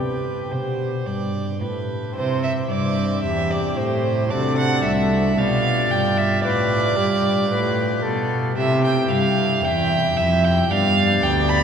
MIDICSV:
0, 0, Header, 1, 5, 480
1, 0, Start_track
1, 0, Key_signature, 0, "major"
1, 0, Tempo, 1086957
1, 952, Time_signature, 3, 2, 24, 8
1, 1903, Tempo, 1065719
1, 5202, End_track
2, 0, Start_track
2, 0, Title_t, "Violin"
2, 0, Program_c, 0, 40
2, 0, Note_on_c, 0, 71, 50
2, 228, Note_on_c, 0, 72, 56
2, 234, Note_off_c, 0, 71, 0
2, 469, Note_on_c, 0, 74, 61
2, 476, Note_off_c, 0, 72, 0
2, 712, Note_off_c, 0, 74, 0
2, 716, Note_on_c, 0, 71, 51
2, 950, Note_off_c, 0, 71, 0
2, 952, Note_on_c, 0, 72, 79
2, 1063, Note_off_c, 0, 72, 0
2, 1073, Note_on_c, 0, 76, 70
2, 1109, Note_off_c, 0, 76, 0
2, 1191, Note_on_c, 0, 74, 78
2, 1423, Note_off_c, 0, 74, 0
2, 1426, Note_on_c, 0, 76, 81
2, 1547, Note_on_c, 0, 74, 74
2, 1554, Note_off_c, 0, 76, 0
2, 1665, Note_on_c, 0, 72, 75
2, 1671, Note_off_c, 0, 74, 0
2, 1899, Note_on_c, 0, 74, 75
2, 1906, Note_off_c, 0, 72, 0
2, 2021, Note_off_c, 0, 74, 0
2, 2024, Note_on_c, 0, 78, 85
2, 2139, Note_off_c, 0, 78, 0
2, 2142, Note_on_c, 0, 76, 75
2, 2387, Note_on_c, 0, 77, 87
2, 2393, Note_off_c, 0, 76, 0
2, 2624, Note_on_c, 0, 79, 79
2, 2631, Note_off_c, 0, 77, 0
2, 2743, Note_on_c, 0, 76, 77
2, 2750, Note_off_c, 0, 79, 0
2, 2860, Note_off_c, 0, 76, 0
2, 2863, Note_on_c, 0, 74, 98
2, 3685, Note_off_c, 0, 74, 0
2, 3821, Note_on_c, 0, 76, 95
2, 3934, Note_off_c, 0, 76, 0
2, 3945, Note_on_c, 0, 79, 80
2, 4061, Note_off_c, 0, 79, 0
2, 4063, Note_on_c, 0, 77, 91
2, 4306, Note_on_c, 0, 79, 92
2, 4313, Note_off_c, 0, 77, 0
2, 4540, Note_on_c, 0, 76, 88
2, 4547, Note_off_c, 0, 79, 0
2, 4665, Note_on_c, 0, 79, 88
2, 4672, Note_off_c, 0, 76, 0
2, 4783, Note_on_c, 0, 77, 103
2, 4790, Note_off_c, 0, 79, 0
2, 5019, Note_on_c, 0, 79, 89
2, 5026, Note_off_c, 0, 77, 0
2, 5138, Note_on_c, 0, 83, 99
2, 5145, Note_off_c, 0, 79, 0
2, 5202, Note_off_c, 0, 83, 0
2, 5202, End_track
3, 0, Start_track
3, 0, Title_t, "Flute"
3, 0, Program_c, 1, 73
3, 0, Note_on_c, 1, 67, 66
3, 467, Note_off_c, 1, 67, 0
3, 1425, Note_on_c, 1, 67, 58
3, 1900, Note_on_c, 1, 69, 71
3, 1906, Note_off_c, 1, 67, 0
3, 2374, Note_off_c, 1, 69, 0
3, 2377, Note_on_c, 1, 74, 74
3, 2850, Note_off_c, 1, 74, 0
3, 2860, Note_on_c, 1, 71, 63
3, 3100, Note_on_c, 1, 67, 64
3, 3107, Note_off_c, 1, 71, 0
3, 3337, Note_off_c, 1, 67, 0
3, 3340, Note_on_c, 1, 71, 67
3, 3577, Note_on_c, 1, 69, 66
3, 3584, Note_off_c, 1, 71, 0
3, 3820, Note_off_c, 1, 69, 0
3, 3823, Note_on_c, 1, 67, 67
3, 4302, Note_on_c, 1, 76, 70
3, 4309, Note_off_c, 1, 67, 0
3, 4657, Note_off_c, 1, 76, 0
3, 4782, Note_on_c, 1, 74, 83
3, 5202, Note_off_c, 1, 74, 0
3, 5202, End_track
4, 0, Start_track
4, 0, Title_t, "Pipe organ"
4, 0, Program_c, 2, 19
4, 0, Note_on_c, 2, 48, 40
4, 0, Note_on_c, 2, 67, 39
4, 211, Note_off_c, 2, 48, 0
4, 231, Note_on_c, 2, 47, 41
4, 454, Note_off_c, 2, 47, 0
4, 472, Note_on_c, 2, 43, 42
4, 695, Note_off_c, 2, 43, 0
4, 716, Note_on_c, 2, 45, 42
4, 934, Note_off_c, 2, 67, 0
4, 935, Note_on_c, 2, 60, 48
4, 937, Note_off_c, 2, 45, 0
4, 941, Note_on_c, 2, 64, 46
4, 946, Note_on_c, 2, 67, 46
4, 954, Note_on_c, 2, 48, 52
4, 1173, Note_off_c, 2, 48, 0
4, 1191, Note_on_c, 2, 43, 51
4, 1411, Note_off_c, 2, 43, 0
4, 1430, Note_on_c, 2, 40, 53
4, 1649, Note_off_c, 2, 40, 0
4, 1665, Note_on_c, 2, 45, 47
4, 1875, Note_off_c, 2, 60, 0
4, 1879, Note_off_c, 2, 64, 0
4, 1881, Note_off_c, 2, 67, 0
4, 1881, Note_on_c, 2, 57, 47
4, 1884, Note_off_c, 2, 45, 0
4, 1888, Note_on_c, 2, 62, 44
4, 1893, Note_on_c, 2, 66, 49
4, 1901, Note_on_c, 2, 48, 52
4, 2124, Note_off_c, 2, 48, 0
4, 2143, Note_on_c, 2, 36, 52
4, 2356, Note_off_c, 2, 57, 0
4, 2360, Note_off_c, 2, 62, 0
4, 2363, Note_off_c, 2, 66, 0
4, 2365, Note_off_c, 2, 36, 0
4, 2372, Note_on_c, 2, 65, 50
4, 2378, Note_on_c, 2, 67, 49
4, 2384, Note_on_c, 2, 47, 52
4, 2605, Note_off_c, 2, 47, 0
4, 2625, Note_on_c, 2, 43, 53
4, 2846, Note_off_c, 2, 43, 0
4, 2865, Note_on_c, 2, 45, 50
4, 3086, Note_off_c, 2, 45, 0
4, 3105, Note_on_c, 2, 43, 52
4, 3325, Note_off_c, 2, 43, 0
4, 3345, Note_on_c, 2, 45, 55
4, 3565, Note_off_c, 2, 45, 0
4, 3584, Note_on_c, 2, 47, 51
4, 3799, Note_off_c, 2, 65, 0
4, 3802, Note_off_c, 2, 67, 0
4, 3806, Note_off_c, 2, 47, 0
4, 3810, Note_on_c, 2, 64, 49
4, 3819, Note_on_c, 2, 67, 52
4, 3824, Note_on_c, 2, 48, 61
4, 4046, Note_off_c, 2, 48, 0
4, 4065, Note_on_c, 2, 43, 58
4, 4286, Note_off_c, 2, 43, 0
4, 4307, Note_on_c, 2, 40, 58
4, 4527, Note_off_c, 2, 40, 0
4, 4541, Note_on_c, 2, 41, 60
4, 4759, Note_off_c, 2, 64, 0
4, 4761, Note_on_c, 2, 59, 55
4, 4763, Note_off_c, 2, 41, 0
4, 4763, Note_off_c, 2, 67, 0
4, 4768, Note_on_c, 2, 62, 55
4, 4775, Note_on_c, 2, 67, 54
4, 4780, Note_on_c, 2, 43, 61
4, 5002, Note_off_c, 2, 43, 0
4, 5022, Note_on_c, 2, 38, 58
4, 5202, Note_off_c, 2, 38, 0
4, 5202, Note_off_c, 2, 59, 0
4, 5202, Note_off_c, 2, 62, 0
4, 5202, Note_off_c, 2, 67, 0
4, 5202, End_track
5, 0, Start_track
5, 0, Title_t, "Cello"
5, 0, Program_c, 3, 42
5, 0, Note_on_c, 3, 48, 56
5, 210, Note_off_c, 3, 48, 0
5, 228, Note_on_c, 3, 47, 54
5, 453, Note_off_c, 3, 47, 0
5, 471, Note_on_c, 3, 43, 52
5, 695, Note_off_c, 3, 43, 0
5, 713, Note_on_c, 3, 45, 53
5, 936, Note_off_c, 3, 45, 0
5, 952, Note_on_c, 3, 48, 66
5, 1173, Note_off_c, 3, 48, 0
5, 1189, Note_on_c, 3, 43, 58
5, 1422, Note_off_c, 3, 43, 0
5, 1429, Note_on_c, 3, 40, 67
5, 1661, Note_off_c, 3, 40, 0
5, 1665, Note_on_c, 3, 45, 63
5, 1903, Note_on_c, 3, 48, 65
5, 1909, Note_off_c, 3, 45, 0
5, 2141, Note_off_c, 3, 48, 0
5, 2143, Note_on_c, 3, 36, 66
5, 2381, Note_on_c, 3, 47, 62
5, 2388, Note_off_c, 3, 36, 0
5, 2618, Note_off_c, 3, 47, 0
5, 2621, Note_on_c, 3, 43, 64
5, 2857, Note_off_c, 3, 43, 0
5, 2861, Note_on_c, 3, 45, 70
5, 3097, Note_off_c, 3, 45, 0
5, 3100, Note_on_c, 3, 43, 67
5, 3336, Note_off_c, 3, 43, 0
5, 3338, Note_on_c, 3, 45, 64
5, 3575, Note_off_c, 3, 45, 0
5, 3581, Note_on_c, 3, 47, 64
5, 3817, Note_off_c, 3, 47, 0
5, 3820, Note_on_c, 3, 48, 72
5, 4057, Note_off_c, 3, 48, 0
5, 4061, Note_on_c, 3, 43, 61
5, 4296, Note_off_c, 3, 43, 0
5, 4299, Note_on_c, 3, 40, 76
5, 4536, Note_off_c, 3, 40, 0
5, 4540, Note_on_c, 3, 41, 74
5, 4775, Note_off_c, 3, 41, 0
5, 4777, Note_on_c, 3, 43, 71
5, 5014, Note_off_c, 3, 43, 0
5, 5017, Note_on_c, 3, 38, 70
5, 5202, Note_off_c, 3, 38, 0
5, 5202, End_track
0, 0, End_of_file